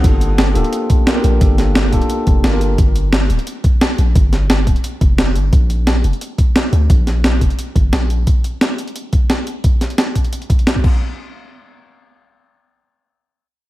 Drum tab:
CC |----------------|----------------|----------------|----------------|
HH |x-x-x-xxx-x-x-x-|x-x-x-xxx-x-x-x-|x-x-x-xxx-x-x-x-|x-x-x-xxx-x-x-x-|
SD |----o-------o---|--o-o-------o---|----o-------o---|--o-o-------o---|
BD |o---------o-----|o-----o---o-----|o---------o-----|o-----o---o-----|

CC |----------------|----------------|----------------|--------------x-|
HH |x-x-x-xxx-x-x-x-|x-x-x-xxx-x-x-x-|x-x-x-xxx-x-x-x-|x-xxx-xxxxxxx---|
SD |----o-------o---|--o-o-------o---|----o-------o---|--o-o-------o---|
BD |o---------o-----|o-----o---o-----|o---------o-----|o-----o---o--oo-|

CC |----------------|----------------|
HH |----------------|----------------|
SD |----------------|----------------|
BD |----------------|----------------|